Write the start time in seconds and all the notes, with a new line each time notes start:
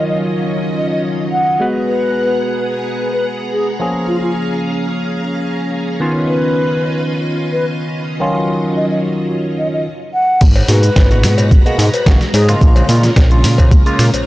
Already playing: D#3 F#3 C#4 F4 D#5
0.09 D#5
0.77 D#5
0.92 D#5
1.32 F#5
1.60 G#3 B3 F#4 G#4 B4 F#5 A#5
1.87 B4
3.12 B4
3.53 G#4
3.79 F3 A#3 C#4 G#4 F5
4.07 F4
4.22 F4
6.00 D#3 B3 C#4 F4 B4 D#5
6.28 B4
7.52 B4
8.20 D#3 F#3 C#4 F4
8.76 D#5
8.90 D#5
9.58 D#5
9.73 D#5
10.14 F#5
10.41 G#1 G#3 F#4 B4 A#5, kick, closed hi-hat, crash, shaker
10.56 closed hi-hat, cowbell, shaker
10.68 G#2 B2 G#3 A#3 F#4 B4, open hi-hat, shaker
10.83 closed hi-hat, shaker
10.96 G#1, kick, snare, closed hi-hat, cowbell, shaker
11.10 A#2 B2 G#3 F#4, closed hi-hat, shaker
11.23 G#2, finger snap, open hi-hat, shaker
11.38 closed hi-hat, cowbell, shaker
11.51 G#1, kick, closed hi-hat, shaker
11.65 B2 G#3 A#3 F#4, closed hi-hat, shaker
11.78 G#2, open hi-hat, shaker
11.93 B4, closed hi-hat, cowbell, shaker
12.06 G#1 B2 G#3 A#3 F#4, kick, snare, closed hi-hat, shaker
12.21 snare, closed hi-hat, shaker
12.33 G#2 G#4, open hi-hat, cowbell, shaker
12.48 C#3 G#3 A#3 F4, finger snap, closed hi-hat, shaker
12.61 A#1 C#4 F4, kick, closed hi-hat, shaker
12.76 closed hi-hat, cowbell, shaker
12.89 A#2 C#3 G#3 A#3 F4, open hi-hat, shaker
13.03 F4, snare, closed hi-hat, shaker
13.16 A#1, kick, snare, closed hi-hat, cowbell, shaker
13.31 C#3 G#3 A#3 F4, closed hi-hat, shaker
13.44 A#2, open hi-hat, shaker
13.58 kick, closed hi-hat, cowbell, shaker
13.71 A#1, kick, closed hi-hat, shaker
13.85 C#3 G#3 A#3 F4, closed hi-hat, shaker
13.99 A#2, finger snap, open hi-hat, shaker
14.14 A#1, closed hi-hat, cowbell, shaker